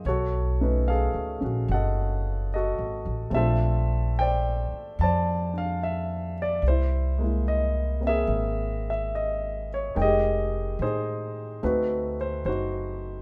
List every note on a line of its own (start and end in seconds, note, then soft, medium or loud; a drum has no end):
0.05 1.10 B1 medium
0.05 1.42 F#4 medium
0.05 0.88 A4 medium
0.05 0.90 C#5 medium
0.61 3.29 A3 soft
0.61 1.39 C#4 soft
0.61 3.33 D#4 soft
0.61 3.33 B4 soft
0.88 2.48 G#4 medium
0.88 1.72 A4 medium
0.88 1.65 F5 medium
1.14 1.39 C#2 medium
1.41 1.67 A#1 medium
1.41 3.32 C#4 soft
1.41 2.54 F#4 soft
1.68 2.74 F#1 medium
1.68 2.54 F#5 medium
1.74 2.54 A4 soft
1.74 2.52 D#5 soft
2.54 3.31 F#4 soft
2.54 3.31 A4 soft
2.54 3.30 D#5 medium
2.78 3.03 G#1 medium
3.05 3.31 A1 medium
3.30 4.67 A#1 medium
3.30 6.61 A3 soft
3.30 6.62 C4 soft
3.30 5.52 D4 soft
3.35 6.64 F4 soft
3.35 4.95 A4 medium
3.35 4.19 C5 medium
3.35 4.12 E5 medium
4.19 5.02 C5 medium
4.19 5.02 D5 medium
4.19 4.95 G5 medium
4.72 muted upright bass stroke soft
4.99 6.59 F2 medium
4.99 5.52 A5 medium
5.03 6.61 C5 medium
5.03 6.41 D5 medium
5.53 6.62 D4 soft
5.58 5.80 F5 medium
5.83 6.34 E5 medium
6.42 6.63 D5 medium
6.62 8.24 C2 medium
6.68 7.22 E4 medium
6.68 7.44 C5 medium
7.18 9.94 G#3 soft
7.18 7.99 A#3 soft
7.24 9.97 E4 soft
7.48 8.00 D#5 medium
8.01 9.95 A#3 soft
8.01 9.96 C4 soft
8.07 9.68 G#4 medium
8.07 9.68 A#4 medium
8.07 8.89 E5 medium
8.27 9.90 G#1 medium
8.90 9.12 E5 medium
9.15 9.72 D#5 medium
9.74 9.96 C#5 medium
9.95 10.75 F1 medium
9.95 11.61 G#3 soft
9.95 10.81 D#4 soft
9.95 11.62 A#4 soft
9.95 11.62 G5 medium
10.02 11.61 G4 medium
10.02 10.81 G#4 medium
10.02 10.84 D#5 medium
10.79 11.58 A2 medium
10.79 11.60 D#4 medium
10.79 11.60 G#4 medium
10.79 11.66 C5 medium
11.63 12.41 D2 medium
11.63 13.22 A3 soft
11.63 13.22 C4 soft
11.63 12.47 D#4 soft
11.63 12.46 F#4 soft
11.63 12.16 B4 medium
12.21 12.44 C5 medium
12.44 13.22 F#1 medium
12.44 13.22 D#4 soft
12.44 13.22 F#4 soft
12.44 13.22 C5 medium